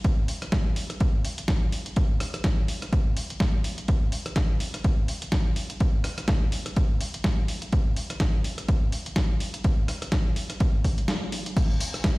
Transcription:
0.04 kick, closed hi-hat
0.28 open hi-hat
0.42 cross-stick, closed hi-hat
0.52 kick, snare, closed hi-hat
0.76 open hi-hat
0.90 cross-stick, closed hi-hat
1.00 kick, closed hi-hat
1.25 open hi-hat
1.38 closed hi-hat
1.48 kick, snare, closed hi-hat
1.72 open hi-hat
1.86 closed hi-hat
1.96 kick, closed hi-hat
2.20 cross-stick, open hi-hat
2.34 cross-stick, closed hi-hat
2.44 kick, snare, closed hi-hat
2.68 open hi-hat
2.82 cross-stick, closed hi-hat
2.93 kick, closed hi-hat
3.17 open hi-hat
3.30 closed hi-hat
3.40 kick, snare, closed hi-hat
3.64 open hi-hat
3.78 closed hi-hat
3.88 kick, closed hi-hat
4.12 open hi-hat
4.26 cross-stick, closed hi-hat
4.36 kick, snare, closed hi-hat
4.60 open hi-hat
4.74 cross-stick, closed hi-hat
4.84 kick, closed hi-hat
5.08 open hi-hat
5.22 closed hi-hat
5.32 kick, snare, closed hi-hat
5.56 open hi-hat
5.70 closed hi-hat
5.80 kick, closed hi-hat
6.04 cross-stick, open hi-hat
6.18 cross-stick, closed hi-hat
6.28 kick, snare, closed hi-hat
6.52 open hi-hat
6.66 cross-stick, closed hi-hat
6.76 kick, closed hi-hat
7.01 open hi-hat
7.14 closed hi-hat
7.24 kick, snare, closed hi-hat
7.48 open hi-hat
7.62 closed hi-hat
7.72 kick, closed hi-hat
7.96 open hi-hat
8.10 cross-stick, closed hi-hat
8.20 kick, snare, closed hi-hat
8.44 open hi-hat
8.58 cross-stick, closed hi-hat
8.68 kick, closed hi-hat
8.92 open hi-hat
9.06 closed hi-hat
9.16 kick, snare, closed hi-hat
9.40 open hi-hat
9.54 closed hi-hat
9.64 kick, closed hi-hat
9.88 cross-stick, open hi-hat
10.02 cross-stick, closed hi-hat
10.12 kick, snare, closed hi-hat
10.36 open hi-hat
10.50 cross-stick, closed hi-hat
10.60 kick, closed hi-hat
10.84 kick, open hi-hat
10.98 closed hi-hat
11.08 snare, closed hi-hat
11.32 open hi-hat
11.46 closed hi-hat
11.57 kick, closed hi-hat, crash, tambourine
11.70 tambourine
11.80 open hi-hat, tambourine
11.94 cross-stick, closed hi-hat, tambourine
12.04 kick, snare, closed hi-hat

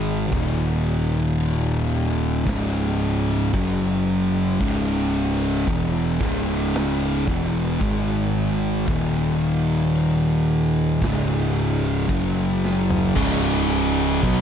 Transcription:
Already playing: G#1 G#2 D#3 G#3
0.33 D#1 D#2 A#2 D#3, kick, crash
1.40 crash
2.46 C#1 C#2 G#2 C#3, kick, snare, crash
3.30 snare
3.54 F#1 F#2 C#3 F#3, kick, crash
4.60 C#1 C#2 G#2 C#3, kick, crash
5.67 E1 E2 B2 E3, kick, crash
6.21 C#1 C#2 G#2 C#3, kick
6.74 snare, crash
7.27 E1 E2 B2 E3, kick
7.81 G#1 G#2 D#3 G#3, kick, crash
8.87 D#1 D#2 A#2 D#3, kick, crash
9.95 crash
11.01 C#1 C#2 G#2 C#3, kick, snare, crash
12.08 F#1 F#2 C#3 F#3, kick, crash
12.65 snare
12.90 floor tom
13.16 C#1 C#2 G#2 C#3, kick, crash
14.23 B1 B2 F#3 B3, kick, crash

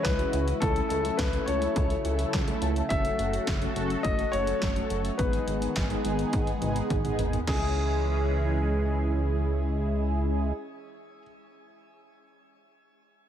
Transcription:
Already playing: C#3 E3 G#3 C#4 E4 G#4
0.03 C#2 B4, kick, snare, closed hi-hat
0.19 G#3 C#4 E4 F#4, closed hi-hat
0.33 C#2, closed hi-hat
0.48 closed hi-hat
0.60 C#2 F#3 A3 C#4 E4 A4, kick, closed hi-hat
0.76 closed hi-hat
0.89 C#2 A4, closed hi-hat
1.05 closed hi-hat
1.17 C#2 B4, kick, snare, closed hi-hat
1.33 A3 C#4 E4 A4, closed hi-hat
1.46 C#2 A3 C#4 E4 A4 C#5, closed hi-hat
1.62 closed hi-hat
1.76 C#2, kick, closed hi-hat
1.90 closed hi-hat
2.05 C#2 A3 C#4 E4 A4, closed hi-hat
2.19 closed hi-hat
2.33 C#2, kick, snare, closed hi-hat
2.47 A3 C#4 E4 A4, closed hi-hat
2.62 C#2, closed hi-hat
2.76 closed hi-hat
2.89 F#1 A3 C#4 F#4 A4 E5, kick, closed hi-hat
3.05 closed hi-hat
3.19 F#1, closed hi-hat
3.33 closed hi-hat
3.47 F#1, kick, snare, closed hi-hat
3.62 A3 C#4 F#4 A4, closed hi-hat
3.76 F#1 A3 C#4 F#4 A4, closed hi-hat
3.90 closed hi-hat
4.03 F#1 D#5, kick, closed hi-hat
4.19 closed hi-hat
4.32 F#1 A3 C#4 F#4 A4 C#5, closed hi-hat
4.47 closed hi-hat
4.62 F#1, kick, snare, closed hi-hat
4.76 A3 C#4 F#4 A4, closed hi-hat
4.90 F#1, closed hi-hat
5.05 closed hi-hat
5.18 G#1 D#3 G#3 B3 D#4 G#4 B4, kick, closed hi-hat
5.33 closed hi-hat
5.48 G#1, closed hi-hat
5.62 closed hi-hat
5.76 G#1, kick, snare, closed hi-hat
5.90 G#3 B3 D#4 G#4, closed hi-hat
6.05 G#1 G#3 B3 D#4 G#4, closed hi-hat
6.19 closed hi-hat
6.33 G#1, kick, closed hi-hat, high tom
6.47 closed hi-hat
6.62 G#1 G#3 B3 D#4 G#4, closed hi-hat, mid tom
6.76 closed hi-hat
6.90 G#1, kick, closed hi-hat, mid tom
7.05 G#3 B3 D#4 G#4, closed hi-hat, mid tom
7.19 G#1, closed hi-hat, floor tom
7.33 closed hi-hat, floor tom
7.47 C#2 E3 G#3 C#4 E4 G#4, kick, snare, crash

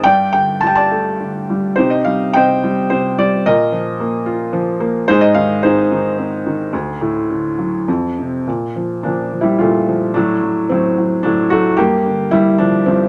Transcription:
0.04 G2 D5 G5
0.33 D3 G5
0.61 G3 A5
0.67 G5
0.75 D5 A5
0.91 A3
1.20 D3
1.50 G3
1.76 C3 D#4 G4 C5
1.90 D#5
2.04 G3 F5
2.33 C3 C5 D#5 G5
2.64 G3
2.90 C3 C5
3.18 G3 D5
3.45 A#2 A#4 D#5
3.72 F3
4.00 A#3
4.26 F4
4.53 F3
4.80 A#3
5.08 G#2 D#4 G#4 C5
5.21 D#5
5.34 D#3 F5
5.63 C4 D#4 G#4 C5
5.92 D#3
6.18 C4
6.46 D#3
6.73 D2
7.01 A2
7.30 D3
7.58 F#3
7.88 F2
8.18 C3
8.47 A#2
8.76 F3
9.03 A#2 F3 D4
9.33 F3
9.41 G3 E4
9.58 A#2 A3 F4
9.88 F3
10.14 A2 F#3 D4
10.43 F#3
10.69 A2 F#3 C4
10.98 F#3
11.23 A2 F#3 D4
11.50 F#3 A3 F#4
11.77 G2 A#3 G4
12.06 D3
12.31 G2 G3 E4
12.58 D3 F3 D4
12.86 G2 F3 C4

